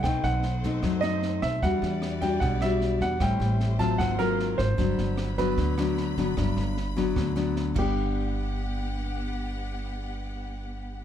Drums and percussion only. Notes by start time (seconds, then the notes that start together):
0.04 kick, cross-stick, snare
0.24 snare
0.43 snare
0.63 kick, snare
0.83 kick, cross-stick, snare
1.03 snare
1.22 snare
1.42 kick, cross-stick, snare
1.62 kick, snare
1.83 snare
2.02 cross-stick, snare
2.22 kick, snare
2.41 kick, snare
2.61 cross-stick, snare
2.81 snare
3.01 kick, snare
3.20 kick, cross-stick, snare
3.41 snare
3.60 snare
3.79 kick, snare
3.99 kick, cross-stick, snare
4.19 snare
4.40 snare
4.59 kick, cross-stick, snare
4.78 kick, snare
4.98 snare
5.17 cross-stick, snare
5.38 kick, snare
5.57 kick, snare
5.78 cross-stick, snare
5.97 snare
6.17 kick, snare
6.37 kick, cross-stick, snare
6.57 snare
6.77 snare
6.97 kick, snare
7.16 kick, cross-stick, snare
7.36 snare
7.56 snare
7.76 kick, crash